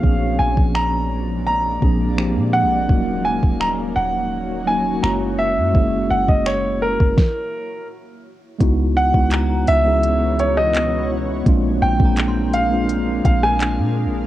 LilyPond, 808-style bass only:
\new Staff \with { instrumentName = "808-style bass" } { \clef bass \time 4/4 \key cis \dorian \tempo 4 = 84 ais,,8 ais,,16 ais,,4.~ ais,,16 ais,,8. ais,16. ais,,16. | dis,,8. dis,,8. dis,,4. fis,,8. fis,16 | fis,,8 fis,,16 fis,,4 fis,,16 r2 | cis,8. cis,8. cis,2~ cis,8 |
ais,,8 ais,,16 ais,,4.~ ais,,16 ais,,8. ais,16. ais,,16. | }